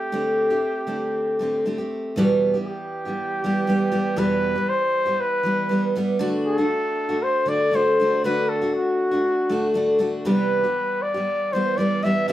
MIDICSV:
0, 0, Header, 1, 3, 480
1, 0, Start_track
1, 0, Key_signature, 1, "minor"
1, 0, Tempo, 507185
1, 111, Time_signature, 4, 2, 24, 8
1, 11665, End_track
2, 0, Start_track
2, 0, Title_t, "Trumpet"
2, 0, Program_c, 0, 56
2, 0, Note_on_c, 0, 67, 86
2, 1560, Note_off_c, 0, 67, 0
2, 2516, Note_on_c, 0, 67, 90
2, 3959, Note_on_c, 0, 71, 105
2, 3974, Note_off_c, 0, 67, 0
2, 4441, Note_on_c, 0, 72, 106
2, 4455, Note_off_c, 0, 71, 0
2, 4925, Note_on_c, 0, 71, 96
2, 4939, Note_off_c, 0, 72, 0
2, 5637, Note_off_c, 0, 71, 0
2, 6110, Note_on_c, 0, 69, 102
2, 6843, Note_on_c, 0, 72, 101
2, 6857, Note_off_c, 0, 69, 0
2, 7085, Note_on_c, 0, 74, 107
2, 7099, Note_off_c, 0, 72, 0
2, 7338, Note_on_c, 0, 72, 97
2, 7352, Note_off_c, 0, 74, 0
2, 7798, Note_off_c, 0, 72, 0
2, 7804, Note_on_c, 0, 71, 108
2, 8036, Note_on_c, 0, 69, 92
2, 8050, Note_off_c, 0, 71, 0
2, 8272, Note_off_c, 0, 69, 0
2, 8280, Note_on_c, 0, 66, 81
2, 9196, Note_off_c, 0, 66, 0
2, 9711, Note_on_c, 0, 71, 92
2, 10429, Note_on_c, 0, 74, 101
2, 10444, Note_off_c, 0, 71, 0
2, 10911, Note_on_c, 0, 72, 90
2, 10925, Note_off_c, 0, 74, 0
2, 11143, Note_on_c, 0, 74, 100
2, 11157, Note_off_c, 0, 72, 0
2, 11390, Note_on_c, 0, 76, 103
2, 11405, Note_off_c, 0, 74, 0
2, 11622, Note_off_c, 0, 76, 0
2, 11627, Note_on_c, 0, 76, 116
2, 11665, Note_off_c, 0, 76, 0
2, 11665, End_track
3, 0, Start_track
3, 0, Title_t, "Steel-string acoustic guitar"
3, 0, Program_c, 1, 25
3, 0, Note_on_c, 1, 57, 37
3, 0, Note_on_c, 1, 60, 40
3, 0, Note_on_c, 1, 67, 47
3, 107, Note_off_c, 1, 57, 0
3, 109, Note_off_c, 1, 67, 0
3, 115, Note_on_c, 1, 50, 69
3, 116, Note_off_c, 1, 60, 0
3, 119, Note_on_c, 1, 57, 74
3, 127, Note_on_c, 1, 60, 72
3, 129, Note_on_c, 1, 67, 77
3, 464, Note_off_c, 1, 67, 0
3, 471, Note_off_c, 1, 60, 0
3, 473, Note_off_c, 1, 50, 0
3, 475, Note_off_c, 1, 57, 0
3, 475, Note_on_c, 1, 67, 61
3, 482, Note_on_c, 1, 60, 52
3, 498, Note_on_c, 1, 57, 46
3, 816, Note_off_c, 1, 57, 0
3, 820, Note_on_c, 1, 50, 59
3, 823, Note_off_c, 1, 60, 0
3, 827, Note_on_c, 1, 57, 66
3, 834, Note_off_c, 1, 67, 0
3, 834, Note_on_c, 1, 60, 61
3, 843, Note_on_c, 1, 67, 64
3, 1306, Note_off_c, 1, 50, 0
3, 1310, Note_off_c, 1, 57, 0
3, 1313, Note_off_c, 1, 60, 0
3, 1318, Note_on_c, 1, 50, 63
3, 1331, Note_on_c, 1, 57, 67
3, 1342, Note_on_c, 1, 60, 73
3, 1349, Note_off_c, 1, 67, 0
3, 1353, Note_on_c, 1, 67, 68
3, 1555, Note_off_c, 1, 50, 0
3, 1561, Note_off_c, 1, 57, 0
3, 1566, Note_on_c, 1, 50, 58
3, 1567, Note_off_c, 1, 60, 0
3, 1571, Note_on_c, 1, 57, 60
3, 1572, Note_off_c, 1, 67, 0
3, 1581, Note_on_c, 1, 60, 63
3, 1587, Note_on_c, 1, 67, 67
3, 1674, Note_off_c, 1, 67, 0
3, 1679, Note_off_c, 1, 50, 0
3, 1682, Note_off_c, 1, 57, 0
3, 1685, Note_on_c, 1, 67, 53
3, 1687, Note_off_c, 1, 60, 0
3, 1696, Note_on_c, 1, 60, 50
3, 1709, Note_on_c, 1, 57, 42
3, 2039, Note_off_c, 1, 67, 0
3, 2043, Note_on_c, 1, 40, 90
3, 2044, Note_off_c, 1, 60, 0
3, 2051, Note_off_c, 1, 57, 0
3, 2056, Note_on_c, 1, 47, 90
3, 2057, Note_on_c, 1, 52, 94
3, 2060, Note_on_c, 1, 55, 106
3, 2066, Note_on_c, 1, 67, 97
3, 2070, Note_on_c, 1, 59, 99
3, 2391, Note_off_c, 1, 67, 0
3, 2398, Note_off_c, 1, 40, 0
3, 2402, Note_off_c, 1, 59, 0
3, 2403, Note_on_c, 1, 67, 55
3, 2404, Note_off_c, 1, 47, 0
3, 2405, Note_off_c, 1, 52, 0
3, 2406, Note_off_c, 1, 55, 0
3, 2414, Note_on_c, 1, 59, 53
3, 2418, Note_on_c, 1, 55, 54
3, 2431, Note_on_c, 1, 52, 46
3, 2877, Note_off_c, 1, 67, 0
3, 2883, Note_off_c, 1, 59, 0
3, 2885, Note_off_c, 1, 55, 0
3, 2888, Note_on_c, 1, 67, 50
3, 2892, Note_off_c, 1, 52, 0
3, 2899, Note_on_c, 1, 59, 51
3, 2909, Note_on_c, 1, 55, 49
3, 2916, Note_on_c, 1, 52, 47
3, 3240, Note_off_c, 1, 67, 0
3, 3242, Note_off_c, 1, 52, 0
3, 3245, Note_off_c, 1, 59, 0
3, 3250, Note_off_c, 1, 55, 0
3, 3254, Note_on_c, 1, 52, 65
3, 3260, Note_on_c, 1, 55, 74
3, 3268, Note_on_c, 1, 59, 81
3, 3276, Note_on_c, 1, 67, 79
3, 3463, Note_off_c, 1, 52, 0
3, 3466, Note_off_c, 1, 55, 0
3, 3474, Note_on_c, 1, 52, 67
3, 3477, Note_on_c, 1, 55, 69
3, 3478, Note_off_c, 1, 59, 0
3, 3487, Note_off_c, 1, 67, 0
3, 3489, Note_on_c, 1, 59, 75
3, 3499, Note_on_c, 1, 67, 82
3, 3694, Note_off_c, 1, 52, 0
3, 3695, Note_off_c, 1, 55, 0
3, 3703, Note_off_c, 1, 59, 0
3, 3706, Note_on_c, 1, 52, 62
3, 3706, Note_on_c, 1, 55, 73
3, 3711, Note_off_c, 1, 67, 0
3, 3714, Note_on_c, 1, 59, 80
3, 3722, Note_on_c, 1, 67, 71
3, 3936, Note_off_c, 1, 52, 0
3, 3940, Note_on_c, 1, 40, 82
3, 3943, Note_off_c, 1, 55, 0
3, 3943, Note_off_c, 1, 59, 0
3, 3943, Note_on_c, 1, 47, 82
3, 3945, Note_off_c, 1, 67, 0
3, 3947, Note_on_c, 1, 52, 91
3, 3954, Note_on_c, 1, 55, 91
3, 3954, Note_on_c, 1, 59, 88
3, 3956, Note_on_c, 1, 67, 91
3, 4299, Note_off_c, 1, 67, 0
3, 4306, Note_off_c, 1, 40, 0
3, 4307, Note_off_c, 1, 47, 0
3, 4309, Note_off_c, 1, 52, 0
3, 4310, Note_on_c, 1, 67, 57
3, 4312, Note_off_c, 1, 55, 0
3, 4313, Note_off_c, 1, 59, 0
3, 4330, Note_on_c, 1, 55, 54
3, 4335, Note_on_c, 1, 52, 46
3, 4772, Note_off_c, 1, 67, 0
3, 4784, Note_on_c, 1, 67, 57
3, 4793, Note_off_c, 1, 55, 0
3, 4796, Note_on_c, 1, 59, 56
3, 4803, Note_off_c, 1, 52, 0
3, 4805, Note_on_c, 1, 55, 50
3, 4813, Note_on_c, 1, 52, 45
3, 5131, Note_off_c, 1, 52, 0
3, 5142, Note_on_c, 1, 52, 64
3, 5145, Note_off_c, 1, 55, 0
3, 5147, Note_off_c, 1, 67, 0
3, 5153, Note_off_c, 1, 59, 0
3, 5156, Note_on_c, 1, 55, 66
3, 5167, Note_on_c, 1, 59, 66
3, 5172, Note_on_c, 1, 67, 63
3, 5375, Note_off_c, 1, 52, 0
3, 5387, Note_on_c, 1, 52, 63
3, 5391, Note_off_c, 1, 55, 0
3, 5396, Note_off_c, 1, 59, 0
3, 5401, Note_off_c, 1, 67, 0
3, 5402, Note_on_c, 1, 55, 67
3, 5408, Note_on_c, 1, 59, 68
3, 5419, Note_on_c, 1, 67, 68
3, 5625, Note_off_c, 1, 52, 0
3, 5633, Note_off_c, 1, 55, 0
3, 5636, Note_on_c, 1, 52, 74
3, 5639, Note_off_c, 1, 59, 0
3, 5644, Note_off_c, 1, 67, 0
3, 5644, Note_on_c, 1, 55, 80
3, 5651, Note_on_c, 1, 59, 80
3, 5662, Note_on_c, 1, 67, 80
3, 5856, Note_off_c, 1, 52, 0
3, 5860, Note_off_c, 1, 55, 0
3, 5860, Note_on_c, 1, 50, 97
3, 5863, Note_on_c, 1, 57, 89
3, 5869, Note_off_c, 1, 59, 0
3, 5870, Note_off_c, 1, 67, 0
3, 5873, Note_on_c, 1, 62, 101
3, 5874, Note_on_c, 1, 66, 101
3, 6215, Note_off_c, 1, 66, 0
3, 6224, Note_off_c, 1, 62, 0
3, 6225, Note_off_c, 1, 50, 0
3, 6226, Note_off_c, 1, 57, 0
3, 6226, Note_on_c, 1, 66, 61
3, 6235, Note_on_c, 1, 62, 55
3, 6256, Note_on_c, 1, 57, 46
3, 6697, Note_off_c, 1, 66, 0
3, 6708, Note_off_c, 1, 62, 0
3, 6708, Note_on_c, 1, 66, 57
3, 6714, Note_off_c, 1, 57, 0
3, 6720, Note_on_c, 1, 62, 47
3, 6725, Note_on_c, 1, 57, 49
3, 7054, Note_off_c, 1, 57, 0
3, 7057, Note_on_c, 1, 50, 62
3, 7066, Note_on_c, 1, 57, 62
3, 7067, Note_off_c, 1, 62, 0
3, 7069, Note_off_c, 1, 66, 0
3, 7079, Note_on_c, 1, 62, 66
3, 7082, Note_on_c, 1, 66, 77
3, 7289, Note_off_c, 1, 50, 0
3, 7301, Note_on_c, 1, 50, 61
3, 7305, Note_off_c, 1, 57, 0
3, 7314, Note_off_c, 1, 62, 0
3, 7315, Note_off_c, 1, 66, 0
3, 7316, Note_on_c, 1, 57, 71
3, 7323, Note_on_c, 1, 62, 68
3, 7329, Note_on_c, 1, 66, 70
3, 7545, Note_off_c, 1, 50, 0
3, 7552, Note_off_c, 1, 57, 0
3, 7556, Note_off_c, 1, 62, 0
3, 7559, Note_off_c, 1, 66, 0
3, 7568, Note_on_c, 1, 50, 59
3, 7580, Note_on_c, 1, 62, 68
3, 7584, Note_on_c, 1, 57, 60
3, 7597, Note_on_c, 1, 66, 73
3, 7790, Note_off_c, 1, 50, 0
3, 7798, Note_off_c, 1, 57, 0
3, 7801, Note_on_c, 1, 50, 76
3, 7802, Note_off_c, 1, 66, 0
3, 7805, Note_off_c, 1, 62, 0
3, 7809, Note_on_c, 1, 57, 89
3, 7813, Note_on_c, 1, 66, 90
3, 7817, Note_on_c, 1, 62, 99
3, 8143, Note_off_c, 1, 66, 0
3, 8154, Note_off_c, 1, 62, 0
3, 8154, Note_on_c, 1, 66, 53
3, 8155, Note_off_c, 1, 50, 0
3, 8159, Note_off_c, 1, 57, 0
3, 8166, Note_on_c, 1, 62, 53
3, 8173, Note_on_c, 1, 57, 47
3, 8613, Note_off_c, 1, 66, 0
3, 8625, Note_on_c, 1, 66, 58
3, 8629, Note_off_c, 1, 62, 0
3, 8640, Note_on_c, 1, 62, 52
3, 8641, Note_off_c, 1, 57, 0
3, 8652, Note_on_c, 1, 57, 45
3, 8976, Note_off_c, 1, 57, 0
3, 8984, Note_on_c, 1, 50, 71
3, 8986, Note_off_c, 1, 66, 0
3, 8987, Note_on_c, 1, 57, 74
3, 8988, Note_off_c, 1, 62, 0
3, 9000, Note_on_c, 1, 62, 75
3, 9009, Note_on_c, 1, 66, 79
3, 9207, Note_off_c, 1, 50, 0
3, 9218, Note_off_c, 1, 57, 0
3, 9218, Note_on_c, 1, 50, 67
3, 9222, Note_off_c, 1, 62, 0
3, 9229, Note_on_c, 1, 57, 74
3, 9233, Note_on_c, 1, 62, 78
3, 9234, Note_off_c, 1, 66, 0
3, 9245, Note_on_c, 1, 66, 74
3, 9440, Note_off_c, 1, 50, 0
3, 9447, Note_off_c, 1, 57, 0
3, 9452, Note_on_c, 1, 50, 63
3, 9454, Note_off_c, 1, 62, 0
3, 9459, Note_on_c, 1, 57, 61
3, 9463, Note_off_c, 1, 66, 0
3, 9465, Note_on_c, 1, 62, 73
3, 9474, Note_on_c, 1, 66, 73
3, 9700, Note_off_c, 1, 50, 0
3, 9701, Note_on_c, 1, 48, 81
3, 9703, Note_off_c, 1, 57, 0
3, 9705, Note_on_c, 1, 52, 90
3, 9707, Note_off_c, 1, 62, 0
3, 9711, Note_off_c, 1, 66, 0
3, 9713, Note_on_c, 1, 55, 82
3, 9715, Note_on_c, 1, 67, 87
3, 9716, Note_on_c, 1, 59, 85
3, 10054, Note_off_c, 1, 67, 0
3, 10064, Note_off_c, 1, 48, 0
3, 10065, Note_off_c, 1, 59, 0
3, 10066, Note_on_c, 1, 67, 57
3, 10067, Note_off_c, 1, 52, 0
3, 10070, Note_off_c, 1, 55, 0
3, 10076, Note_on_c, 1, 59, 50
3, 10091, Note_on_c, 1, 55, 43
3, 10542, Note_off_c, 1, 67, 0
3, 10545, Note_on_c, 1, 67, 57
3, 10552, Note_off_c, 1, 59, 0
3, 10566, Note_on_c, 1, 59, 51
3, 10571, Note_off_c, 1, 55, 0
3, 10575, Note_on_c, 1, 55, 44
3, 10907, Note_off_c, 1, 67, 0
3, 10912, Note_on_c, 1, 52, 69
3, 10917, Note_off_c, 1, 59, 0
3, 10918, Note_off_c, 1, 55, 0
3, 10930, Note_on_c, 1, 55, 68
3, 10940, Note_on_c, 1, 59, 65
3, 10945, Note_on_c, 1, 67, 72
3, 11134, Note_off_c, 1, 52, 0
3, 11146, Note_on_c, 1, 52, 65
3, 11147, Note_off_c, 1, 55, 0
3, 11158, Note_off_c, 1, 59, 0
3, 11158, Note_on_c, 1, 55, 67
3, 11167, Note_off_c, 1, 67, 0
3, 11169, Note_on_c, 1, 59, 73
3, 11177, Note_on_c, 1, 67, 68
3, 11370, Note_off_c, 1, 52, 0
3, 11382, Note_on_c, 1, 52, 63
3, 11386, Note_off_c, 1, 55, 0
3, 11396, Note_off_c, 1, 59, 0
3, 11398, Note_on_c, 1, 55, 64
3, 11403, Note_off_c, 1, 67, 0
3, 11408, Note_on_c, 1, 59, 73
3, 11414, Note_on_c, 1, 67, 67
3, 11616, Note_off_c, 1, 55, 0
3, 11618, Note_off_c, 1, 52, 0
3, 11621, Note_on_c, 1, 48, 80
3, 11623, Note_off_c, 1, 59, 0
3, 11625, Note_off_c, 1, 67, 0
3, 11627, Note_on_c, 1, 55, 89
3, 11629, Note_on_c, 1, 52, 85
3, 11635, Note_on_c, 1, 59, 92
3, 11637, Note_on_c, 1, 67, 85
3, 11665, Note_off_c, 1, 48, 0
3, 11665, Note_off_c, 1, 52, 0
3, 11665, Note_off_c, 1, 55, 0
3, 11665, Note_off_c, 1, 59, 0
3, 11665, Note_off_c, 1, 67, 0
3, 11665, End_track
0, 0, End_of_file